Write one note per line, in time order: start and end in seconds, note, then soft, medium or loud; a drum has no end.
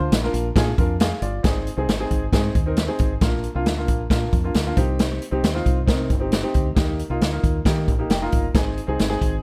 0.00 0.08 D2 medium
0.00 0.12 D4 medium
0.00 0.12 F4 medium
0.00 0.13 C5 medium
0.11 0.28 A#1 medium
0.11 snare loud
0.11 closed hi-hat loud
0.23 0.45 D4 medium
0.23 0.45 F4 medium
0.23 0.46 A#4 medium
0.23 snare soft
0.34 0.50 A#1 medium
0.34 closed hi-hat medium
0.56 0.72 A#2 medium
0.56 0.70 D4 medium
0.56 0.71 F4 medium
0.56 0.71 G#4 medium
0.56 kick medium
0.56 snare loud
0.56 closed hi-hat medium
0.78 1.11 F2 medium
0.78 0.92 D4 medium
0.78 0.93 F4 medium
0.78 0.93 A#4 medium
0.78 kick medium
0.78 closed hi-hat medium
1.00 1.22 G#4 medium
1.00 1.21 F5 medium
1.00 snare loud
1.00 closed hi-hat medium
1.22 1.38 G1 medium
1.22 1.64 F4 medium
1.22 1.64 D5 medium
1.22 closed hi-hat medium
1.43 1.69 G#1 medium
1.43 1.66 C4 medium
1.43 1.66 D#4 medium
1.43 1.67 G#4 medium
1.43 kick loud
1.43 snare medium
1.43 closed hi-hat medium
1.67 closed hi-hat medium
1.77 1.85 C2 medium
1.77 1.92 C4 medium
1.77 1.92 D#4 medium
1.77 1.93 G#4 medium
1.88 2.05 G#1 medium
1.88 snare loud
1.88 closed hi-hat medium
1.99 2.22 C4 medium
1.99 2.22 D#4 medium
1.99 2.22 G#4 medium
2.11 2.27 G#1 medium
2.11 kick medium
2.11 closed hi-hat medium
2.32 2.49 G#2 medium
2.32 2.55 C4 medium
2.32 2.55 D#4 medium
2.32 2.56 G#4 medium
2.32 kick medium
2.32 snare loud
2.32 closed hi-hat medium
2.55 2.88 D#2 medium
2.55 kick medium
2.55 closed hi-hat medium
2.66 2.81 C4 medium
2.66 2.81 D#4 medium
2.66 2.82 A#4 medium
2.76 snare loud
2.76 closed hi-hat medium
2.87 3.10 C4 medium
2.87 3.10 D#4 medium
2.87 3.11 G#4 medium
2.99 3.16 G#1 medium
2.99 kick medium
2.99 closed hi-hat medium
3.21 3.46 A#1 medium
3.21 3.44 A#3 medium
3.21 3.44 D4 medium
3.21 3.44 F4 medium
3.21 kick loud
3.21 snare loud
3.21 closed hi-hat medium
3.44 closed hi-hat medium
3.55 3.67 C2 medium
3.55 3.70 A#3 medium
3.55 3.70 D4 medium
3.55 3.70 F4 medium
3.66 3.89 D2 medium
3.66 snare loud
3.66 closed hi-hat medium
3.77 3.99 A#3 medium
3.77 3.99 D4 medium
3.77 4.00 F4 medium
3.88 4.05 A#1 medium
3.88 kick medium
3.88 closed hi-hat medium
4.10 4.27 A#2 medium
4.10 4.33 A#3 medium
4.10 4.33 D4 medium
4.10 4.33 F4 medium
4.10 kick medium
4.10 snare loud
4.10 closed hi-hat medium
4.33 4.49 F2 medium
4.33 kick medium
4.33 closed hi-hat medium
4.44 4.59 A#3 medium
4.44 4.59 D4 medium
4.44 4.59 F4 medium
4.54 4.71 D2 medium
4.54 snare loud
4.54 closed hi-hat medium
4.65 4.77 A#3 medium
4.65 4.77 D4 medium
4.65 4.77 F4 medium
4.76 5.18 C2 medium
4.76 5.21 C4 medium
4.76 5.21 D#4 medium
4.76 5.22 G4 medium
4.76 kick medium
4.76 closed hi-hat medium
4.99 snare loud
4.99 closed hi-hat medium
5.22 closed hi-hat medium
5.31 5.40 C2 medium
5.31 5.47 C4 medium
5.31 5.47 D#4 medium
5.31 5.48 G4 medium
5.43 5.60 D#2 medium
5.43 snare loud
5.43 closed hi-hat medium
5.54 5.77 C4 medium
5.54 5.77 D#4 medium
5.54 5.77 F4 medium
5.54 snare soft
5.66 5.89 C2 medium
5.66 kick medium
5.66 closed hi-hat medium
5.86 6.12 C3 medium
5.86 6.10 C4 medium
5.86 6.10 D#4 medium
5.86 6.10 A#4 medium
5.86 kick medium
5.86 snare medium
5.86 closed hi-hat medium
6.10 6.43 G1 medium
6.10 kick medium
6.10 closed hi-hat medium
6.20 6.35 C4 medium
6.20 6.36 D#4 medium
6.20 6.36 G4 medium
6.32 snare loud
6.32 closed hi-hat medium
6.42 6.65 C4 medium
6.42 6.65 D#4 medium
6.42 6.66 G4 medium
6.54 6.71 D2 medium
6.54 kick medium
6.54 closed hi-hat medium
6.75 7.02 D#2 medium
6.75 6.98 A#3 medium
6.75 6.99 D#4 medium
6.75 6.99 G4 medium
6.75 kick loud
6.75 snare medium
6.75 closed hi-hat medium
6.99 closed hi-hat medium
7.10 7.18 C2 medium
7.10 7.25 A#3 medium
7.10 7.25 D#4 medium
7.10 7.25 F4 medium
7.21 7.38 D2 medium
7.21 snare loud
7.21 closed hi-hat medium
7.32 7.55 A#3 medium
7.32 7.55 D#4 medium
7.32 7.55 F4 medium
7.43 7.60 D#2 medium
7.43 kick medium
7.43 closed hi-hat medium
7.65 7.89 D#3 medium
7.65 7.88 A#3 medium
7.65 7.88 D#4 medium
7.65 7.89 G4 medium
7.65 kick medium
7.65 snare loud
7.65 closed hi-hat medium
7.88 8.04 A#1 medium
7.88 kick medium
7.88 closed hi-hat soft
7.99 8.14 A#3 medium
7.99 8.14 D#4 medium
7.99 8.14 G4 medium
8.10 8.26 F1 medium
8.10 8.21 G5 medium
8.10 snare loud
8.10 closed hi-hat medium
8.22 8.44 A#3 medium
8.22 8.44 D#4 medium
8.22 8.45 F4 medium
8.22 8.53 A#5 medium
8.32 8.49 G1 medium
8.32 kick medium
8.32 closed hi-hat medium
8.54 8.79 G#1 medium
8.54 8.77 C4 medium
8.54 8.77 D#4 medium
8.54 8.78 G#4 medium
8.54 kick loud
8.54 snare loud
8.54 closed hi-hat medium
8.77 closed hi-hat medium
8.87 8.96 C2 medium
8.87 9.03 C4 medium
8.87 9.03 D#4 medium
8.87 9.03 G#4 medium
8.99 9.16 G#1 medium
8.99 snare medium
8.99 closed hi-hat medium
9.09 9.32 C4 medium
9.09 9.32 D#4 medium
9.09 9.32 G#4 medium
9.09 snare soft
9.21 9.38 G#1 medium
9.21 kick medium
9.21 closed hi-hat medium